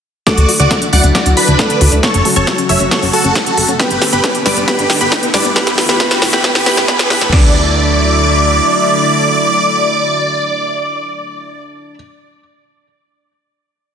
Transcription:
0.27 analog synth pad D3 F#3 A3 E4, felt piano A3 A4, synth arpeggio sound D4, supersaw synth F#4 D5, synth pluck D6, kick, snare, closed hi-hat, riser
0.38 analog synth bass D2, closed hi-hat
0.49 synth arpeggio sound F#4, open hi-hat
0.60 analog synth bass D2, synth arpeggio sound D4, supersaw synth F#4 D5, synth pluck D6, closed hi-hat
0.71 synth arpeggio sound A4, kick, snare, closed hi-hat
0.82 synth arpeggio sound D4, closed hi-hat
0.93 analog synth bass D2, felt piano F#3 F#4, synth arpeggio sound F#4, supersaw synth D5 F#5, synth pluck F#6, open hi-hat
1.04 analog synth bass D2, synth arpeggio sound D4, closed hi-hat
1.15 supersaw synth F#4 D5, synth arpeggio sound A4, synth pluck D6, kick, snare, closed hi-hat
1.26 analog synth bass D2, synth arpeggio sound D4, closed hi-hat
1.37 supersaw synth D4 B4, synth arpeggio sound F#4, synth pluck B5, open hi-hat
1.48 analog synth bass D2, synth arpeggio sound D4, closed hi-hat
1.59 felt piano A3 A4, synth arpeggio sound A4, kick, snare, closed hi-hat
1.70 synth arpeggio sound D4, closed hi-hat
1.81 analog synth bass D2, synth arpeggio sound F#4, open hi-hat
1.92 analog synth bass D2, synth arpeggio sound D4, closed hi-hat
2.03 analog synth pad C#3 F#4, synth arpeggio sound C#4, supersaw synth A4 C#5, synth pluck C#6, kick, snare, closed hi-hat
2.14 analog synth bass F#1, closed hi-hat
2.25 felt piano F#3 F#4, synth arpeggio sound A4, open hi-hat
2.36 analog synth bass F#1, synth arpeggio sound C#4, supersaw synth A4 C#5, synth pluck C#6, closed hi-hat
2.47 synth arpeggio sound C#5, kick, snare, closed hi-hat
2.58 synth arpeggio sound C#4, closed hi-hat
2.69 analog synth bass F#1, synth arpeggio sound A4, supersaw synth C#5 E5, synth pluck E6, open hi-hat
2.80 analog synth bass F#1, synth arpeggio sound C#4, closed hi-hat
2.91 supersaw synth A4 C#5, synth arpeggio sound C#5, synth pluck C#6, kick, snare, closed hi-hat
3.02 analog synth bass F#1, synth arpeggio sound C#4, open hi-hat
3.13 supersaw synth F#4 A4, synth arpeggio sound A4, synth pluck A5, open hi-hat
3.24 analog synth bass F#1, synth arpeggio sound C#4, closed hi-hat
3.35 synth arpeggio sound C#5, kick, snare, closed hi-hat
3.46 synth arpeggio sound C#4, closed hi-hat
3.57 analog synth bass F#1, synth arpeggio sound A4, open hi-hat
3.68 analog synth bass F#1, synth arpeggio sound C#4, closed hi-hat
3.79 analog synth pad D3 B3 G4, synth arpeggio sound B3, felt piano B3 B4, supersaw synth G4 B4, synth pluck B5, kick, snare, closed hi-hat
3.90 analog synth bass G1, closed hi-hat
4.02 synth arpeggio sound G4, snare, open hi-hat
4.13 analog synth bass G1, synth arpeggio sound B3, supersaw synth G4 B4, synth pluck B5, closed hi-hat
4.24 synth arpeggio sound A4, kick, snare, closed hi-hat
4.35 synth arpeggio sound B3, closed hi-hat
4.46 analog synth bass G1, felt piano G3 G4, synth arpeggio sound G4, supersaw synth B4 D5, synth pluck D6, snare, open hi-hat
4.57 analog synth bass G1, synth arpeggio sound B3, closed hi-hat
4.68 synth arpeggio sound B3, felt piano B3 B4, supersaw synth G4 B4, synth pluck B5, kick, snare, closed hi-hat
4.79 analog synth bass G1, closed hi-hat
4.90 synth arpeggio sound G4, snare, open hi-hat
5.01 analog synth bass G1, synth arpeggio sound B3, supersaw synth G4 B4, synth pluck B5, closed hi-hat
5.12 synth arpeggio sound A4, kick, snare, closed hi-hat
5.23 synth arpeggio sound B3, closed hi-hat
5.34 analog synth bass G1, felt piano G3 G4, synth arpeggio sound G4, supersaw synth B4 D5, synth pluck D6, snare, open hi-hat
5.45 analog synth bass G1, synth arpeggio sound B3, closed hi-hat
5.56 analog synth pad E3 A3 E4, synth arpeggio sound B3, felt piano B3 B4, supersaw synth G4 B4, synth pluck B5, kick, snare, closed hi-hat
5.67 analog synth bass A1, snare, closed hi-hat
5.78 synth arpeggio sound G4, snare, open hi-hat
5.89 analog synth bass A1, synth arpeggio sound B3, supersaw synth G4 B4, synth pluck B5, snare, closed hi-hat
6.00 synth arpeggio sound B3, felt piano B3 B4, synth pluck B5, kick, snare, closed hi-hat
6.11 snare, closed hi-hat
6.22 analog synth bass A1, synth arpeggio sound G4, snare, open hi-hat
6.33 analog synth bass A1, synth arpeggio sound B3, supersaw synth G4 B4, synth pluck B5, snare, closed hi-hat
6.44 felt piano B3 B4, synth arpeggio sound B3, supersaw synth G4 B4, synth pluck B5, kick, snare, closed hi-hat
6.55 analog synth bass A1, snare, open hi-hat
6.66 felt piano B3 B4, synth arpeggio sound B3, supersaw synth G4 B4, synth pluck B5, snare, open hi-hat
6.77 analog synth bass A1, snare, closed hi-hat
6.88 synth arpeggio sound B3, felt piano B3 B4, supersaw synth G4 B4, synth pluck B5, kick, snare, closed hi-hat
6.99 snare, closed hi-hat
7.10 analog synth bass E2, synth arpeggio sound B3, felt piano B3 B4, supersaw synth G4 B4, synth pluck B5, snare, open hi-hat
7.21 analog synth bass A2, snare, closed hi-hat
7.32 analog synth bass D2, analog synth pad D3 F#3 A3 E4, felt piano D4, synth arpeggio sound D4, supersaw synth D5, synth pluck D6, kick, snare, crash

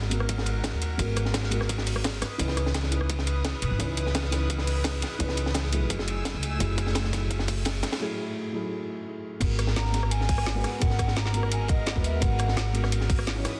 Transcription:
Already playing: upright bass G#1, felt piano G#3 B3 F#4 A#4, string section A#4 F#5
0.02 snare
0.10 felt piano G#3 B3 F#4 A#4, closed hi-hat, ride
0.20 cross-stick
0.29 kick, closed hi-hat, ride
0.38 snare
0.46 closed hi-hat, ride
0.64 kick, snare, closed hi-hat, ride
0.73 upright bass D#2
0.82 closed hi-hat, ride
0.98 upright bass G#1, felt piano G#3 B3 F#4 A#4, kick, closed hi-hat, ride
1.16 cross-stick, closed hi-hat, ride
1.25 snare
1.34 kick, snare, closed hi-hat, ride
1.43 snare
1.50 felt piano G#3 B3 F#4 A#4, closed hi-hat, ride
1.61 cross-stick, snare
1.69 kick, closed hi-hat, ride
1.78 snare
1.86 closed hi-hat, open hi-hat
1.96 cross-stick
2.04 kick, snare, closed hi-hat, ride
2.22 string section B4 D#6, cross-stick, snare, closed hi-hat, ride
2.38 upright bass C#2, felt piano E3 C#4 D#4 B4, kick, closed hi-hat, ride
2.48 snare
2.57 cross-stick, closed hi-hat, ride
2.66 snare
2.74 kick, snare, closed hi-hat, ride
2.83 snare
2.91 felt piano E3 C#4 D#4 B4, closed hi-hat, ride
3.01 cross-stick
3.10 kick, closed hi-hat, ride
3.19 snare
3.27 closed hi-hat, ride
3.45 kick, snare, closed hi-hat, ride
3.62 upright bass B1, closed hi-hat, ride
3.71 upright bass G#1
3.78 upright bass C#2, felt piano E3 C#4 D#4 B4, kick, closed hi-hat, ride
3.97 closed hi-hat, ride
4.07 snare
4.15 kick, snare, closed hi-hat, ride
4.23 snare
4.31 felt piano E3 C#4 D#4 B4, snare, closed hi-hat, ride
4.50 kick, closed hi-hat, ride
4.58 snare
4.67 closed hi-hat, open hi-hat
4.84 kick, snare, closed hi-hat, ride
5.02 snare, closed hi-hat, ride
5.19 upright bass C#2, felt piano E3 C#4 D#4 B4, kick, closed hi-hat, ride
5.29 snare
5.37 closed hi-hat, ride
5.46 snare
5.54 kick, snare, closed hi-hat, ride
5.64 snare
5.71 felt piano F#3 A3 E4 G#4, closed hi-hat, ride
5.90 upright bass F#1, string section A3 G#5 E6, kick, closed hi-hat, ride
5.99 snare
6.08 closed hi-hat, ride
6.25 kick, snare, closed hi-hat, ride
6.34 upright bass C#2
6.43 closed hi-hat, ride
6.59 upright bass F#1, felt piano F#3 A3 E4 G#4, kick, closed hi-hat, ride
6.78 kick, closed hi-hat, ride
6.87 snare
6.95 kick, snare, closed hi-hat, ride
7.04 snare
7.12 felt piano F#3 A3 E4 G#4, kick, snare, closed hi-hat, ride
7.30 kick, closed hi-hat, ride
7.39 snare
7.48 kick, closed hi-hat, open hi-hat
7.65 kick, snare, closed hi-hat, ride
7.83 kick, snare, closed hi-hat, ride
7.92 snare, ride
8.00 felt piano F#3 A3 E4 G#4
8.52 felt piano F#3 A3 E4 G#4
9.40 upright bass G#1, felt piano G#3 B3 F#4 A#4, string section A#4 F#5, kick, closed hi-hat, crash, ride
9.59 cross-stick, closed hi-hat, ride
9.67 snare
9.76 flute A#5, snare, closed hi-hat, ride
9.85 snare
9.92 felt piano G#3 B3 F#4 A#4, snare, closed hi-hat, ride
10.03 cross-stick
10.11 flute G#5, closed hi-hat, ride
10.21 snare
10.29 kick, closed hi-hat, open hi-hat
10.38 cross-stick
10.46 snare, closed hi-hat, ride
10.55 felt piano G#3 B3 F#4 B4
10.64 cross-stick, snare, closed hi-hat, ride
10.75 flute G#5
10.80 upright bass G#1, felt piano G#3 B3 F#4 A#4, flute F#5, kick, closed hi-hat, ride
10.90 snare
10.98 kick, cross-stick, closed hi-hat, ride
11.08 snare
11.16 flute A#5, snare, closed hi-hat, ride
11.25 snare
11.33 felt piano G#3 B3 F#4 A#4, closed hi-hat, ride
11.43 cross-stick
11.52 flute G#5, closed hi-hat, ride
11.68 flute D#5, kick, closed hi-hat, ride
11.86 snare, closed hi-hat, ride
11.95 upright bass D#2, felt piano G#3 B3 F#4 B4, kick
12.04 flute E5, closed hi-hat, ride
12.20 upright bass G#1, felt piano G#3 B3 F#4 A#4, flute F#5, kick, closed hi-hat, ride
12.39 cross-stick, closed hi-hat, ride
12.48 snare
12.57 snare, closed hi-hat, ride
12.65 snare
12.73 felt piano G#3 B3 F#4 A#4, closed hi-hat, ride
12.83 cross-stick, snare
12.92 closed hi-hat, ride
13.01 snare
13.10 kick, closed hi-hat, open hi-hat
13.19 cross-stick
13.27 snare, closed hi-hat, ride
13.36 felt piano E3 C#4 D#4 C#5
13.45 string section B4 D#6, cross-stick, snare, closed hi-hat, ride

